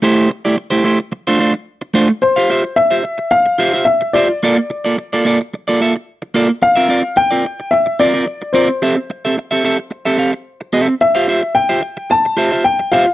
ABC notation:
X:1
M:4/4
L:1/16
Q:1/4=109
K:Dm
V:1 name="Grand piano"
z16 | c4 e4 f4 e2 d2- | d6 z8 z2 | f4 g4 e2 d4 c2- |
c12- c2 z2 | e4 g4 a4 g2 f2 |]
V:2 name="Clean electric guitar"
[A,EGc]2 z [A,EGd] z [A,EGc] [A,EGc] z2 [A,DFc] [A,DFc] z3 [A,DFc] z | z [FGcf] [FGce] z2 [FGce] z4 [FGce] [FGce] z2 [FGce] z | [B,FAd] z2 [B,FAd] z [B,FAd] [B,FAd] z2 [B,FAd] [B,FAe] z3 [B,FAd] z | z [CFBe] [CFBd] z2 [CFBd] z4 [CFBd] [CFBd] z2 [CFBd] z |
[CGAe] z2 [CGAe] z [CGAe] [CGAe] z2 [CGAe] [CGAf] z3 [CGAe] z | z [FGcf] [FGce] z2 [FGce] z4 [FGce] [FGce] z2 [FGce] z |]